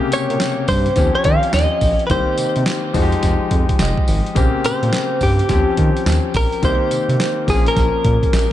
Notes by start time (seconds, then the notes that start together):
Already playing: C3 C#3 A#3 G4
0.12 A#2 C#5, closed hi-hat, tambourine
0.30 A#2, closed hi-hat
0.40 snare, clap, closed hi-hat, tambourine
0.68 G2 C5, kick, open hi-hat, tambourine
0.86 closed hi-hat
0.96 D#2 F3 C4 C#4 G4, kick, snare, closed hi-hat, tambourine
1.15 C#5
1.24 D#3 F5, kick, closed hi-hat
1.43 closed hi-hat
1.53 D#2 D#5, snare, clap, closed hi-hat, tambourine
1.81 A#1, kick, open hi-hat, tambourine
1.99 closed hi-hat
2.07 C2 D#3 A#3 B4, kick, closed hi-hat, tambourine
2.11 C4 G4 C5
2.38 C3, closed hi-hat, tambourine
2.56 C3, closed hi-hat
2.66 snare, clap, closed hi-hat, tambourine
2.93 F1 F3 G#3 D#4 F#4, kick, open hi-hat, tambourine
3.02 G4
3.12 closed hi-hat
3.23 F1, kick, snare, closed hi-hat, tambourine
3.51 F2, kick, closed hi-hat
3.69 kick, closed hi-hat
3.79 F1 D#5, snare, clap, closed hi-hat, tambourine
3.98 kick
4.08 G#1, open hi-hat, tambourine
4.26 closed hi-hat
4.35 A#1 C#3 A#3 C4 G4, kick, closed hi-hat, tambourine
4.64 A#2 C5, closed hi-hat, tambourine
4.83 A#2, closed hi-hat
4.93 snare, clap, closed hi-hat, tambourine
5.21 G2 G4, kick, open hi-hat, tambourine
5.39 closed hi-hat
5.49 D#2 F3 C4 C#4 G4, kick, snare, closed hi-hat, tambourine
5.77 D#3, kick, closed hi-hat
5.97 closed hi-hat
6.06 D#2, snare, clap, closed hi-hat, tambourine
6.34 A#1 A#4, kick, open hi-hat, tambourine
6.52 closed hi-hat
6.62 C2 D#3 A#3 C4 G4 C5, kick, closed hi-hat, tambourine
6.91 C3, closed hi-hat, tambourine
7.09 C3, closed hi-hat
7.20 snare, clap, closed hi-hat, tambourine
7.47 A#1 F3 A#3 C4 G#4, kick, open hi-hat, tambourine
7.55 C#4
7.66 A#4, closed hi-hat
7.76 A#1, kick, snare, closed hi-hat, tambourine
8.04 A#2, kick, closed hi-hat
8.23 kick, closed hi-hat
8.33 A#1, snare, clap, closed hi-hat, tambourine